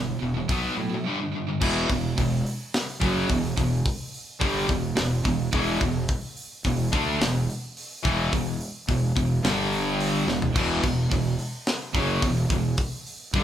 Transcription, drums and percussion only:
0.49 kick loud
0.49 open hi-hat medium
1.61 kick loud
1.61 crash loud
1.90 kick medium
1.90 open hi-hat medium
2.18 kick medium
2.18 open hi-hat medium
2.46 open hi-hat medium
2.74 snare loud
2.74 open hi-hat medium
3.02 kick loud
3.02 open hi-hat medium
3.29 kick loud
3.29 open hi-hat medium
3.58 kick medium
3.58 open hi-hat medium
3.86 kick loud
3.86 open hi-hat medium
4.14 open hi-hat medium
4.41 kick loud
4.41 open hi-hat medium
4.69 kick medium
4.69 open hi-hat medium
4.97 snare loud
4.97 open hi-hat loud
5.25 kick loud
5.25 open hi-hat medium
5.52 kick loud
5.52 open hi-hat medium
5.81 kick medium
5.81 open hi-hat medium
6.08 kick loud
6.08 open hi-hat medium
6.37 open hi-hat medium
6.64 kick medium
6.64 open hi-hat medium
6.93 kick loud
6.93 open hi-hat medium
7.21 snare loud
7.21 open hi-hat medium
7.50 open hi-hat medium
7.77 open hi-hat medium
8.05 kick loud
8.05 open hi-hat medium
8.33 kick medium
8.33 open hi-hat medium
8.61 open hi-hat medium
8.89 kick medium
8.89 open hi-hat medium
9.17 kick medium
9.17 open hi-hat medium
9.44 snare loud
9.44 open hi-hat medium
9.72 open hi-hat medium
10.00 open hi-hat medium
10.28 snare medium
10.42 floor tom loud
10.56 kick loud
10.56 splash medium
10.56 crash loud
10.84 kick medium
10.84 open hi-hat medium
11.12 kick medium
11.12 open hi-hat medium
11.39 open hi-hat medium
11.67 snare loud
11.67 open hi-hat medium
11.95 kick loud
11.95 open hi-hat medium
12.22 kick loud
12.22 open hi-hat medium
12.50 kick loud
12.50 open hi-hat medium
12.77 kick loud
12.77 open hi-hat medium
13.06 open hi-hat medium
13.34 kick loud
13.34 open hi-hat medium

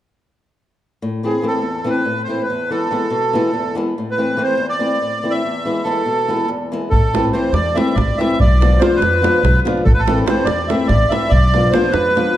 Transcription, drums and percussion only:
6.92 davul low medium
7.15 davul high medium
7.25 davul high soft
7.44 davul high soft
7.54 davul high medium
7.66 davul high soft
7.78 davul high medium
7.88 davul high soft
7.98 davul high medium
7.98 davul low soft
8.21 davul high medium
8.31 davul high soft
8.40 davul low medium
8.62 davul high medium
8.73 davul high soft
8.82 davul high medium
8.92 davul high soft
9.02 davul high medium
9.13 davul high soft
9.24 davul high medium
9.34 davul high soft
9.45 davul high medium
9.45 davul low medium
9.55 davul high soft
9.67 davul high medium
9.77 davul high soft
9.86 davul low medium
10.08 davul high medium
10.18 davul high soft
10.28 davul high medium
10.38 davul high soft
10.47 davul high medium
10.58 davul high soft
10.70 davul high medium
10.80 davul high soft
10.89 davul high medium
10.89 davul low medium
11.02 davul high soft
11.12 davul high medium
11.22 davul high soft
11.32 davul low medium
11.44 davul high soft
11.54 davul high medium
11.63 davul high soft
11.74 davul high medium
11.84 davul high soft
11.94 davul high medium
12.06 davul high soft
12.17 davul high medium
12.27 davul high soft

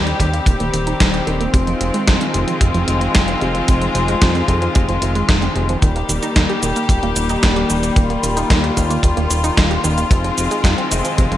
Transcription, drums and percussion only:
0.07 snare soft
0.07 closed hi-hat soft
0.20 kick medium
0.20 closed hi-hat medium
0.34 closed hi-hat soft
0.46 kick loud
0.46 closed hi-hat medium
0.60 closed hi-hat soft
0.74 closed hi-hat medium
0.87 closed hi-hat soft
1.00 kick loud
1.00 snare loud
1.00 closed hi-hat medium
1.14 closed hi-hat soft
1.27 closed hi-hat soft
1.41 closed hi-hat soft
1.54 kick loud
1.54 closed hi-hat medium
1.67 closed hi-hat soft
1.81 closed hi-hat medium
1.94 closed hi-hat soft
2.07 kick loud
2.07 snare loud
2.07 closed hi-hat medium
2.21 closed hi-hat soft
2.34 closed hi-hat medium
2.48 closed hi-hat soft
2.61 kick loud
2.61 closed hi-hat medium
2.74 closed hi-hat soft
2.88 closed hi-hat medium
3.01 closed hi-hat soft
3.15 kick loud
3.15 snare loud
3.15 closed hi-hat medium
3.28 closed hi-hat soft
3.41 closed hi-hat soft
3.55 closed hi-hat soft
3.68 kick loud
3.68 closed hi-hat medium
3.82 closed hi-hat soft
3.95 closed hi-hat medium
4.08 closed hi-hat soft
4.22 kick loud
4.22 snare loud
4.22 closed hi-hat medium
4.35 snare soft
4.35 closed hi-hat soft
4.48 kick medium
4.48 closed hi-hat medium
4.62 closed hi-hat soft
4.75 kick loud
4.75 closed hi-hat medium
4.89 closed hi-hat soft
5.02 closed hi-hat medium
5.15 closed hi-hat soft
5.29 kick loud
5.29 snare loud
5.29 closed hi-hat medium
5.42 closed hi-hat soft
5.56 closed hi-hat soft
5.69 closed hi-hat soft
5.82 kick loud
5.82 closed hi-hat medium
5.82 cabasa soft
5.96 closed hi-hat soft
6.09 closed hi-hat medium
6.09 cabasa medium
6.23 closed hi-hat soft
6.23 cabasa soft
6.36 kick loud
6.36 snare loud
6.36 closed hi-hat medium
6.36 cabasa soft
6.49 closed hi-hat soft
6.63 closed hi-hat medium
6.63 cabasa medium
6.76 closed hi-hat soft
6.76 cabasa soft
6.89 kick loud
6.89 closed hi-hat medium
6.89 cabasa soft
7.03 closed hi-hat soft
7.16 closed hi-hat medium
7.16 cabasa medium
7.29 closed hi-hat soft
7.29 cabasa soft
7.43 kick loud
7.43 snare loud
7.43 closed hi-hat medium
7.43 cabasa soft
7.56 closed hi-hat soft
7.70 closed hi-hat soft
7.70 cabasa medium
7.83 closed hi-hat soft
7.83 cabasa soft
7.96 kick loud
7.96 closed hi-hat medium
7.96 cabasa soft
8.10 closed hi-hat soft
8.23 closed hi-hat medium
8.23 cabasa medium
8.37 closed hi-hat soft
8.37 cabasa soft
8.50 kick loud
8.50 snare loud
8.50 closed hi-hat medium
8.50 cabasa soft
8.64 snare soft
8.64 closed hi-hat soft
8.77 kick medium
8.77 closed hi-hat medium
8.77 cabasa medium
8.91 closed hi-hat soft
8.91 cabasa soft
9.03 kick loud
9.03 closed hi-hat medium
9.03 cabasa soft
9.17 closed hi-hat soft
9.31 closed hi-hat medium
9.31 cabasa medium
9.44 closed hi-hat soft
9.44 cabasa soft
9.57 kick loud
9.57 snare loud
9.57 closed hi-hat medium
9.57 cabasa soft
9.71 closed hi-hat soft
9.84 closed hi-hat soft
9.84 cabasa medium
9.98 closed hi-hat soft
9.98 cabasa soft
10.11 kick loud
10.11 closed hi-hat medium
10.11 cabasa soft
10.24 closed hi-hat soft
10.38 closed hi-hat medium
10.38 cabasa medium
10.51 closed hi-hat soft
10.51 cabasa soft
10.64 kick loud
10.64 snare loud
10.64 closed hi-hat medium
10.64 cabasa soft
10.78 closed hi-hat soft
10.92 closed hi-hat medium
10.92 cabasa medium
11.05 closed hi-hat soft
11.05 cabasa soft
11.18 kick loud
11.18 closed hi-hat medium
11.18 cabasa soft
11.32 closed hi-hat soft

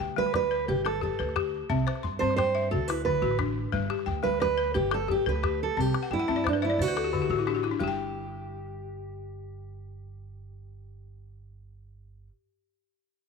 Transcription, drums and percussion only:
0.26 calabash click soft
0.34 calabash thump medium
0.34 calabash click medium
0.52 calabash click soft
0.68 calabash thump medium
0.86 calabash click medium
1.02 calabash thump medium
1.20 calabash click soft
1.29 calabash click soft
1.36 calabash thump medium
1.36 calabash click medium
1.70 calabash thump medium
1.88 calabash click medium
1.96 calabash click soft
2.04 calabash thump medium
2.04 calabash click soft
2.30 calabash click soft
2.38 calabash thump medium
2.38 calabash click medium
2.55 calabash click soft
2.73 calabash thump medium
2.90 calabash click medium
3.06 calabash thump medium
3.24 calabash click soft
3.31 calabash click soft
3.39 calabash thump medium
3.39 calabash click medium
3.72 calabash thump medium
3.90 calabash click medium
3.99 calabash click soft
4.08 calabash thump medium
4.08 calabash click soft
4.34 calabash click soft
4.42 calabash thump medium
4.42 calabash click medium
4.59 calabash click soft
4.76 calabash thump medium
4.91 calabash click medium
5.09 calabash thump medium
5.27 calabash click soft
5.36 calabash click soft
5.44 calabash thump medium
5.44 calabash click medium
5.78 calabash thump medium
5.87 calabash click soft
5.94 calabash click medium
6.12 calabash thump medium
6.12 calabash click soft
6.29 calabash click soft
6.38 calabash click soft
6.47 calabash thump medium
6.47 calabash click medium
6.63 calabash click soft
6.80 calabash thump medium
6.97 calabash click medium
7.15 calabash thump medium
7.30 calabash thump soft
7.47 calabash click soft
7.64 calabash click soft
7.80 calabash thump medium

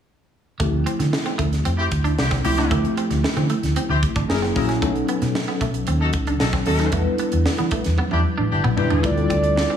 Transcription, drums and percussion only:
0.60 kick loud
0.60 closed hi-hat medium
0.87 closed hi-hat medium
1.00 snare soft
1.00 closed hi-hat soft
1.13 snare loud
1.26 closed hi-hat soft
1.39 kick medium
1.39 closed hi-hat medium
1.53 snare soft
1.53 closed hi-hat soft
1.65 closed hi-hat medium
1.91 kick medium
1.91 closed hi-hat medium
2.05 closed hi-hat soft
2.19 snare loud
2.31 kick medium
2.31 snare soft
2.31 closed hi-hat soft
2.45 open hi-hat medium
2.58 snare soft
2.58 closed hi-hat medium
2.71 kick medium
2.71 closed hi-hat medium
2.85 closed hi-hat soft
2.97 closed hi-hat medium
3.11 snare soft
3.11 closed hi-hat medium
3.24 snare loud
3.37 closed hi-hat soft
3.50 closed hi-hat medium
3.63 snare soft
3.63 closed hi-hat medium
3.76 closed hi-hat medium
4.03 kick medium
4.03 closed hi-hat medium
4.16 kick medium
4.16 closed hi-hat soft
4.30 snare loud
4.43 snare soft
4.56 kick medium
4.56 open hi-hat medium
4.69 snare soft
4.69 closed hi-hat medium
4.82 kick loud
4.82 closed hi-hat medium
4.96 closed hi-hat soft
5.08 closed hi-hat medium
5.22 snare soft
5.22 closed hi-hat medium
5.35 snare loud
5.61 kick medium
5.61 closed hi-hat medium
5.74 closed hi-hat medium
5.87 closed hi-hat medium
6.13 kick medium
6.13 closed hi-hat medium
6.27 closed hi-hat soft
6.40 snare loud
6.53 kick medium
6.53 snare soft
6.66 open hi-hat medium
6.79 snare soft
6.79 closed hi-hat medium
6.92 kick medium
6.92 closed hi-hat medium
7.18 closed hi-hat medium
7.32 closed hi-hat soft
7.46 snare loud
7.58 closed hi-hat soft
7.71 kick medium
7.71 closed hi-hat medium
7.84 snare soft
7.84 closed hi-hat medium
7.98 high tom medium
8.11 high tom soft
8.64 mid tom medium
8.78 floor tom medium
8.91 floor tom medium
9.04 kick medium
9.04 closed hi-hat medium
9.17 closed hi-hat soft
9.30 kick medium
9.30 closed hi-hat medium
9.44 closed hi-hat soft
9.57 snare loud

